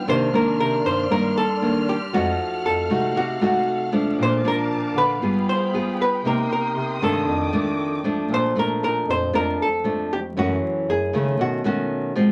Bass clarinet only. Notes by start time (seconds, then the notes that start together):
0.08 C3
0.59 C3
0.84 G2
1.10 G2
2.13 F2
2.65 F2
2.91 C3
3.16 C3
4.18 A#2
4.70 A#2
4.95 D3
5.21 G2
6.24 C3
6.75 C3
7.01 G2
7.27 F2
8.30 A#2
8.81 A#2
9.07 F2
9.33 F2
10.36 F#2
10.87 F#2
11.13 C#3
11.38 B2